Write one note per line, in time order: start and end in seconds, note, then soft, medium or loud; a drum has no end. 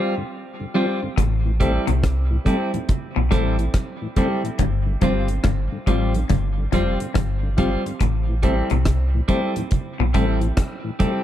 0.00 0.14 G3 loud
0.00 0.14 C4 loud
0.00 0.12 F4 medium
0.00 0.15 F4 loud
0.00 0.13 G4 medium
0.00 0.13 C5 loud
0.17 0.23 G2 medium
0.17 0.23 D3 medium
0.60 0.66 G2 soft
0.60 0.66 D3 medium
0.74 0.86 F3 medium
0.74 0.99 G3 medium
0.74 0.86 G3 medium
0.74 0.86 C4 medium
0.74 1.00 C4 medium
0.74 0.98 F4 medium
0.74 1.00 F4 medium
0.74 0.98 G4 medium
0.74 0.98 C5 loud
1.02 1.09 G2 soft
1.02 1.08 D3 medium
1.02 muted clean electric guitar stroke soft
1.17 1.79 A1 loud
1.17 1.43 A2 medium
1.17 kick loud
1.17 closed hi-hat medium
1.17 low conga medium
1.45 1.51 A2 medium
1.45 1.51 E3 medium
1.60 1.71 G3 medium
1.60 1.85 G3 medium
1.60 1.71 A3 medium
1.60 1.85 C4 medium
1.60 1.72 C4 medium
1.60 1.86 E4 medium
1.60 1.83 G4 medium
1.60 1.83 A4 medium
1.60 1.84 C5 medium
1.60 kick medium
1.60 closed hi-hat medium
1.60 low conga medium
1.87 2.38 C2 medium
1.87 1.94 A2 medium
1.87 2.13 C3 medium
1.87 1.94 E3 medium
1.87 closed hi-hat medium
2.04 kick loud
2.04 cross-stick loud
2.04 closed hi-hat medium
2.31 2.37 A2 medium
2.31 2.37 E3 medium
2.45 2.56 G3 medium
2.45 2.71 G3 medium
2.45 2.56 A3 medium
2.45 2.57 C4 medium
2.45 2.71 C4 medium
2.45 2.71 E4 medium
2.45 2.69 G4 medium
2.45 2.69 A4 medium
2.45 2.69 C5 medium
2.45 kick medium
2.45 closed hi-hat medium
2.45 high conga soft
2.73 2.80 A2 medium
2.73 2.79 E3 medium
2.73 closed hi-hat soft
2.73 high conga medium
2.89 kick loud
2.89 closed hi-hat medium
2.89 low conga medium
3.15 3.30 B1 medium
3.15 3.22 A2 medium
3.15 3.25 B2 medium
3.15 3.22 E3 medium
3.31 3.68 A1 medium
3.31 3.57 A2 medium
3.31 3.56 G3 medium
3.31 3.42 G3 medium
3.31 3.42 A3 medium
3.31 3.56 C4 medium
3.31 3.43 C4 medium
3.31 3.56 E4 medium
3.31 3.54 G4 medium
3.31 3.55 A4 medium
3.31 3.55 C5 medium
3.31 kick medium
3.31 cross-stick medium
3.31 closed hi-hat medium
3.31 low conga medium
3.59 3.65 A2 medium
3.59 3.65 E3 medium
3.59 closed hi-hat soft
3.74 kick loud
3.74 cross-stick loud
3.74 closed hi-hat loud
3.74 high conga soft
4.02 4.08 A2 soft
4.02 4.08 E3 soft
4.16 4.27 G3 medium
4.16 4.42 G3 medium
4.16 4.28 A3 medium
4.16 4.28 C4 medium
4.16 4.42 C4 medium
4.16 4.42 E4 medium
4.16 4.40 G4 medium
4.16 4.40 A4 medium
4.16 4.40 C5 loud
4.16 kick loud
4.16 closed hi-hat medium
4.16 high conga medium
4.16 low conga medium
4.43 4.50 A2 medium
4.43 4.50 E3 medium
4.43 muted clean electric guitar stroke soft
4.43 closed hi-hat soft
4.59 4.97 G1 loud
4.59 4.85 G2 medium
4.59 kick medium
4.59 closed hi-hat medium
4.59 low conga medium
4.86 4.93 G2 medium
4.86 4.93 D3 medium
5.01 5.39 G1 medium
5.01 5.28 G2 medium
5.01 5.13 F3 medium
5.01 5.13 G3 medium
5.01 5.27 G3 medium
5.01 5.13 C4 medium
5.01 5.27 C4 medium
5.01 5.25 F4 medium
5.01 5.28 F4 medium
5.01 5.25 G4 medium
5.01 5.26 C5 medium
5.01 kick medium
5.01 closed hi-hat medium
5.01 low conga medium
5.28 5.36 G2 medium
5.28 5.36 D3 medium
5.28 closed hi-hat soft
5.44 5.69 G1 loud
5.44 5.61 G2 medium
5.44 kick loud
5.44 cross-stick loud
5.44 closed hi-hat medium
5.72 5.78 G2 soft
5.72 5.78 D3 medium
5.87 6.24 A1 medium
5.87 6.13 A2 medium
5.87 5.98 F3 medium
5.87 5.98 G3 medium
5.87 6.12 G3 medium
5.87 5.99 C4 medium
5.87 6.13 C4 medium
5.87 6.10 F4 medium
5.87 6.13 F4 medium
5.87 6.11 G4 medium
5.87 6.11 C5 medium
5.87 kick medium
5.87 closed hi-hat medium
5.87 high conga soft
6.14 6.21 G2 medium
6.14 6.21 D3 medium
6.14 closed hi-hat medium
6.14 high conga medium
6.29 6.67 G1 loud
6.29 6.55 G2 medium
6.29 kick loud
6.29 closed hi-hat medium
6.29 low conga medium
6.57 6.64 G2 medium
6.57 6.64 D3 medium
6.72 6.97 F1 medium
6.72 6.89 F2 medium
6.72 6.84 F3 medium
6.72 6.84 G3 medium
6.72 6.98 G3 medium
6.72 6.84 C4 medium
6.72 6.98 C4 medium
6.72 6.96 F4 medium
6.72 6.99 F4 medium
6.72 6.96 G4 medium
6.72 6.96 C5 loud
6.72 kick medium
6.72 closed hi-hat medium
6.72 low conga medium
7.00 7.07 G2 medium
7.00 7.07 D3 medium
7.00 closed hi-hat medium
7.14 7.77 G1 loud
7.14 7.40 G2 medium
7.14 kick loud
7.14 cross-stick loud
7.14 closed hi-hat medium
7.14 high conga soft
7.43 7.49 G2 medium
7.43 7.49 D3 medium
7.57 7.70 F3 medium
7.57 7.83 G3 medium
7.57 7.70 G3 medium
7.57 7.83 C4 medium
7.57 7.70 C4 medium
7.57 7.81 F4 medium
7.57 7.84 F4 loud
7.57 7.81 G4 medium
7.57 7.81 C5 loud
7.57 kick loud
7.57 closed hi-hat medium
7.57 high conga medium
7.57 low conga medium
7.86 7.92 G2 medium
7.86 7.92 D3 medium
7.86 muted clean electric guitar stroke soft
7.86 closed hi-hat soft
8.00 8.62 A1 loud
8.00 8.27 A2 medium
8.00 kick loud
8.00 closed hi-hat medium
8.00 low conga medium
8.28 8.35 A2 soft
8.28 8.35 E3 soft
8.42 8.68 G3 medium
8.42 8.55 G3 medium
8.42 8.55 A3 medium
8.42 8.55 C4 medium
8.42 8.69 C4 medium
8.42 8.69 E4 loud
8.42 8.66 G4 medium
8.42 8.67 A4 medium
8.42 8.67 C5 medium
8.42 kick medium
8.42 closed hi-hat medium
8.42 low conga medium
8.70 9.22 C2 medium
8.70 8.78 A2 medium
8.70 8.97 C3 medium
8.70 8.78 E3 medium
8.70 closed hi-hat medium
8.85 kick medium
8.85 cross-stick loud
8.85 closed hi-hat medium
9.14 9.20 A2 medium
9.14 9.20 E3 medium
9.28 9.54 G3 medium
9.28 9.40 G3 medium
9.28 9.40 A3 medium
9.28 9.54 C4 medium
9.28 9.41 C4 medium
9.28 9.54 E4 medium
9.28 9.52 G4 medium
9.28 9.52 A4 medium
9.28 9.53 C5 medium
9.28 kick medium
9.28 closed hi-hat medium
9.28 high conga soft
9.56 9.63 A2 medium
9.56 9.63 E3 medium
9.56 closed hi-hat soft
9.56 high conga medium
9.71 kick loud
9.71 closed hi-hat medium
9.71 low conga medium
9.99 10.13 B1 medium
9.99 10.06 A2 medium
9.99 10.09 B2 medium
9.99 10.06 E3 medium
10.13 10.52 A1 medium
10.13 10.41 A2 medium
10.13 10.26 G3 medium
10.13 10.39 G3 medium
10.13 10.26 A3 medium
10.13 10.26 C4 medium
10.13 10.40 C4 medium
10.13 10.40 E4 loud
10.13 10.37 G4 medium
10.13 10.38 A4 medium
10.13 10.38 C5 medium
10.13 kick medium
10.13 closed hi-hat medium
10.13 low conga medium
10.41 10.48 A2 medium
10.41 10.48 E3 medium
10.41 closed hi-hat soft
10.57 kick loud
10.57 cross-stick loud
10.57 closed hi-hat medium
10.57 high conga soft
10.84 10.91 A2 medium
10.84 10.91 E3 medium
10.99 11.11 G3 medium
10.99 11.24 G3 medium
10.99 11.11 A3 medium
10.99 11.11 C4 medium
10.99 11.24 C4 medium
10.99 11.24 E4 medium
10.99 11.23 G4 medium
10.99 11.23 A4 medium
10.99 11.24 C5 medium
10.99 kick medium
10.99 closed hi-hat medium
10.99 high conga medium
10.99 low conga medium